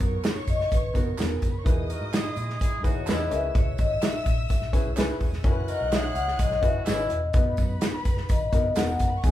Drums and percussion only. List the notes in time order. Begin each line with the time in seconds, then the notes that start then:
0.00 kick, closed hi-hat, tambourine
0.24 snare, clap, closed hi-hat, tambourine
0.47 kick, closed hi-hat, tambourine
0.60 snare
0.71 kick, closed hi-hat, tambourine
0.95 kick, closed hi-hat, tambourine
1.18 snare, clap, closed hi-hat, tambourine
1.42 kick, closed hi-hat, tambourine
1.66 kick, closed hi-hat, tambourine
1.90 closed hi-hat, tambourine
2.13 snare, clap, closed hi-hat, tambourine
2.36 closed hi-hat, tambourine
2.49 snare
2.59 kick, closed hi-hat, tambourine
2.84 kick, closed hi-hat, tambourine
3.07 snare, clap, closed hi-hat, tambourine
3.31 closed hi-hat, tambourine
3.55 kick, closed hi-hat
3.78 kick, closed hi-hat, tambourine
4.02 snare, clap, closed hi-hat, tambourine
4.26 kick, closed hi-hat, tambourine
4.49 kick, closed hi-hat, tambourine
4.62 snare
4.73 kick, closed hi-hat, tambourine
4.97 snare, clap, closed hi-hat, tambourine
5.20 kick, open hi-hat
5.33 snare
5.44 kick, closed hi-hat, tambourine
5.68 closed hi-hat, tambourine
5.92 snare, clap, closed hi-hat, tambourine
6.15 closed hi-hat, tambourine
6.28 snare
6.39 kick, closed hi-hat, tambourine
6.51 snare
6.63 kick, closed hi-hat, tambourine
6.86 snare, clap, closed hi-hat, tambourine
7.10 closed hi-hat
7.33 kick, closed hi-hat
7.57 kick, closed hi-hat, tambourine
7.81 snare, clap, closed hi-hat, tambourine
8.05 kick, closed hi-hat, tambourine
8.17 snare
8.29 kick, closed hi-hat, tambourine
8.53 kick, closed hi-hat, tambourine
8.75 snare, clap, closed hi-hat, tambourine
8.99 kick, closed hi-hat, tambourine
9.24 kick, closed hi-hat